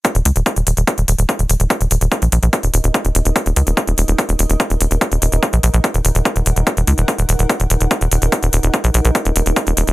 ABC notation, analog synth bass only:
X:1
M:4/4
L:1/16
Q:1/4=145
K:Ebm
V:1 name="Analog synth bass" clef=bass
z E,,, D,, E,,, z E,,, E,,, E,,, z E,,, E,,, E,,, z E,,, E,,, E,,, | z E,,, E,,, E,,, z B,,, B,,, B,,, z E,,, E,,, E,,, z E,,, E,,, E,,, | z E,,, D,, E,,, z E,,, E,,, E,,, z E,,, E,,, E,,, z E,,, E,,, E,,, | z E,,, E,,, E,,, z B,,, B,,, B,,, z E,,, E,,, E,,, z E,,, E,,, E,,, |
z E,,, D,, E,,, z E,,, E,,, E,,, z E,,, E,,, E,,, z E,,, E,,, E,,, | z E,,, E,,, E,,, z B,,, B,,, B,,, z E,,, E,,, E,,, z E,,, E,,, E,,, |]